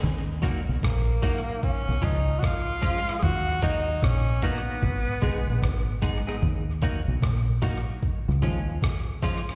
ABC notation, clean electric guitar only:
X:1
M:4/4
L:1/16
Q:"Swing 16ths" 1/4=75
K:Ebm
V:1 name="Clean electric guitar"
z2 [G,B,EG] z3 [G,B,EG] z3 [F,A,DF] z3 [F,A,DF] z | z2 [G,B,EG] z3 [G,B,EG] z3 [A,CEA] z3 [A,CEA] [A,CEA] | z2 [G,B,EG] z3 [G,B,EG] z3 [F,A,DF] z3 [F,A,DF] z |]